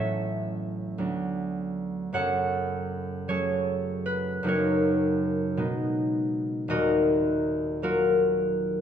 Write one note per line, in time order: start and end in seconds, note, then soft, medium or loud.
0.00 1.02 A1 medium
0.00 1.03 A2 medium
0.00 0.97 F#3 soft
0.00 3.28 A3 soft
0.00 1.03 C#4 soft
0.00 2.14 A4 medium
0.00 2.13 C#5 medium
0.00 2.17 E5 medium
0.00 1.14 F#5 medium
0.98 2.17 D2 medium
0.98 3.27 F#3 soft
0.98 2.17 B3 soft
0.98 2.17 D4 soft
2.13 4.43 F#1 medium
2.13 4.42 F#2 medium
2.13 3.29 A4 medium
2.13 3.27 C#5 medium
2.13 6.04 F#5 loud
3.28 4.44 F#3 soft
3.28 4.48 A3 soft
3.28 6.74 C#4 soft
3.28 4.49 G#4 medium
3.28 4.49 A4 medium
3.28 4.44 C#5 medium
4.06 4.71 B4 loud
4.43 5.61 F#1 medium
4.43 5.62 F#2 medium
4.43 7.81 F#3 soft
4.43 5.62 A#3 medium
4.43 5.58 D#4 medium
4.43 6.70 F#4 medium
4.48 6.69 A#4 medium
4.48 6.74 C#5 medium
5.57 6.73 B2 medium
5.57 6.73 G#3 medium
5.57 6.74 B3 soft
5.57 8.81 D#4 soft
6.68 8.81 D#1 medium
6.68 8.81 D#2 medium
6.68 7.82 F#4 medium
6.68 7.82 A#4 medium
6.68 8.81 D#5 loud
7.82 8.81 F#3 medium
7.82 8.81 A#3 medium
7.82 8.81 F4 medium
7.82 8.81 F#4 medium
7.82 8.81 A#4 medium